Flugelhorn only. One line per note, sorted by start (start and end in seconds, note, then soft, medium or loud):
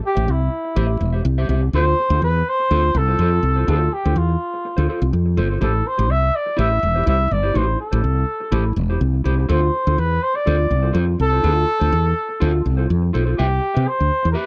0.06 0.33 G4 medium
0.31 1.26 E4 medium
1.75 2.19 C5 loud
2.24 2.51 B4 loud
2.49 2.99 C5 loud
2.97 3.69 A4 medium
3.70 3.95 A4 medium
3.94 4.19 G4 medium
4.18 5.14 F4 medium
5.63 5.89 A4 medium
5.87 6.12 C5 medium
6.11 6.37 E5 loud
6.36 6.59 D5 medium
6.59 7.04 E5 loud
7.08 7.34 E5 loud
7.32 7.58 D5 loud
7.57 7.80 C5 medium
7.81 8.73 A4 medium
9.51 10.00 C5 medium
9.99 10.25 B4 loud
10.23 10.37 C5 medium
10.36 10.95 D5 medium
11.21 12.86 A4 loud
13.39 13.90 G4 medium
13.88 14.30 C5 loud
14.31 14.39 A#4 medium
14.37 14.46 B4 loud